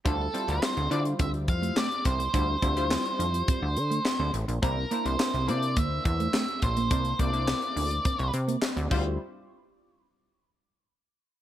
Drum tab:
CC |----------------|----------------|----------------|--------------x-|
HH |x-xx-xxxxxxx-xxx|x-xx-xxxx-xx--xx|x-xx-xxxx-xx-xxx|xxxx-xoxxxxx-x--|
CP |----x-------x---|----x-------x---|----x-------x---|----x-------x---|
SD |----o-------o---|----o-------o---|----o-------o---|----o-------o---|
BD |o-------o-o---o-|o-o-----o-------|o-------o-o---o-|o-o-----o-----o-|

CC |----------------|
HH |----------------|
CP |----------------|
SD |----------------|
BD |----------------|